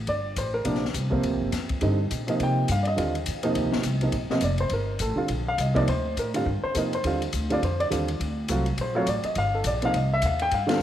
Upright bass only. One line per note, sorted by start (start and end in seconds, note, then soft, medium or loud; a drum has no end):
0.07 0.36 G1 medium
0.37 0.65 A1 medium
0.65 0.93 A#1 medium
0.94 1.23 C2 medium
1.24 1.34 D2 medium
1.34 1.41 A#1 medium
1.42 1.51 G1 medium
1.52 1.81 F2 medium
1.82 2.10 G2 medium
2.11 2.39 A#2 medium
2.40 2.68 C3 medium
2.69 2.97 G2 medium
2.98 3.26 D#2 medium
3.27 3.55 F2 medium
3.55 3.65 D#2 medium
3.65 3.74 C2 medium
3.74 3.83 A#1 medium
3.84 4.12 C2 medium
4.12 4.29 A#1 medium
4.29 muted upright bass stroke soft
4.41 4.69 F1 medium
4.70 4.99 G1 medium
5.00 5.16 A1 loud
5.17 muted upright bass stroke soft
5.29 5.57 A#1 medium
5.58 5.87 C2 medium
5.88 6.16 D2 medium
6.17 6.45 A2 medium
6.46 6.62 G2 medium
6.63 muted upright bass stroke soft
6.75 7.03 F2 medium
7.04 7.32 D#2 medium
7.33 7.61 D2 medium
7.62 7.90 F2 medium
7.91 8.19 D#2 medium
8.20 8.48 D2 medium
8.49 8.77 C2 medium
8.77 9.06 A#1 medium
9.06 9.23 A1 medium
9.24 muted upright bass stroke soft
9.36 9.64 G1 medium
9.64 9.93 A#1 loud
9.94 10.22 C2 medium
10.22 10.51 D#2 medium
10.51 10.79 G2 medium